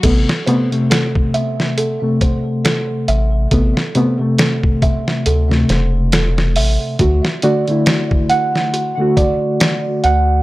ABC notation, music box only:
X:1
M:4/4
L:1/8
Q:"Swing 16ths" 1/4=69
K:Ador
V:1 name="Music box"
A c A e A c A e | A c A e A c A e | F d F f F d F f |]